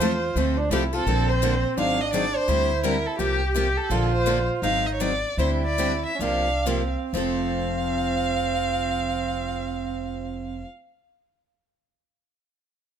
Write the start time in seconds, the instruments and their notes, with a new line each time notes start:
Already playing: violin C5
0.00 upright bass E2, steel-string acoustic guitar F3 A3 C4 F4 A4, soprano saxophone F4
0.36 upright bass D2, steel-string acoustic guitar F3 A3 C4 F4 A4, soprano saxophone C4
0.57 soprano saxophone D4
0.70 upright bass C2, steel-string acoustic guitar F3 A3 C4 F4 A4, soprano saxophone E4, violin G4
0.93 steel-string acoustic guitar C4 F4 A4, soprano saxophone F4, violin A4
1.06 upright bass A#1, steel-string acoustic guitar D3 F3 A#3 D4 A4, soprano saxophone C4
1.29 violin C5
1.42 steel-string acoustic guitar D3 F3 A#3 D4 A4
1.77 upright bass G#1, steel-string acoustic guitar D#3 F#3 C4 D#4 G#4, soprano saxophone D4, violin F5
2.01 violin D#5
2.13 steel-string acoustic guitar D#3 F#3 C4 D#4 G#4, violin D5
2.36 violin C5
2.48 upright bass D2, steel-string acoustic guitar D3 G3 C4 D4 G4, soprano saxophone E4
2.84 steel-string acoustic guitar D3 G3 C4 D4 G4, violin A#4
3.06 violin A4
3.19 upright bass C2, steel-string acoustic guitar C3 F3 A#3 F4 G4, violin G4, soprano saxophone G4
3.55 steel-string acoustic guitar C3 F3 A#3 F4 G4, violin G4
3.77 violin A4
3.90 upright bass A#1, steel-string acoustic guitar D3 F3 A#3 D4 A4, soprano saxophone F4
4.12 violin C5
4.26 steel-string acoustic guitar D3 F3 A#3 D4 A4
4.62 upright bass G#1, steel-string acoustic guitar D#3 F#3 C4 D#4 G#4, soprano saxophone D#4, violin F5
4.86 violin D#5
4.94 violin C#5
5.00 steel-string acoustic guitar D#3 F#3 C4 D#4 G#4, violin D5
5.37 upright bass D2, steel-string acoustic guitar D3 G3 C4 D4 G4, soprano saxophone E4, violin C5
5.65 violin D5
5.78 steel-string acoustic guitar D3 G3 C4 D4 G4
6.06 violin E5
6.15 soprano saxophone C#4
6.19 upright bass C2, steel-string acoustic guitar C3 F3 A#3 F4 G4, soprano saxophone D4, violin F5
6.66 steel-string acoustic guitar C3 F3 A#3 F4 G4, soprano saxophone C4
7.13 upright bass F1, steel-string acoustic guitar F3 A3 C4, soprano saxophone C4, violin F5
7.17 steel-string acoustic guitar A4